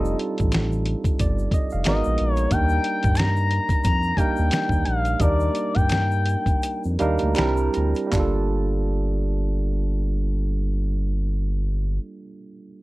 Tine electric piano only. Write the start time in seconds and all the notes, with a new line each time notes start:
Already playing: G3 C4 D4 D#4 F4 A4
1.21 D5
1.54 D#5
1.73 F5
1.85 G#3 B3 D#4 F#4 A#4
2.51 G3 A#3 D4 D#4 A#4
4.17 G3 A#3 D4 D#4 A#4
5.20 G3 A#3 D4 D#4 A#4
6.99 G3 A#3 D4 D#4 A#4 F5
7.36 G3 C4 D4 E4 A#4 G5
7.75 A#5
8.07 G3 A#3
8.13 D4 F4
8.20 A4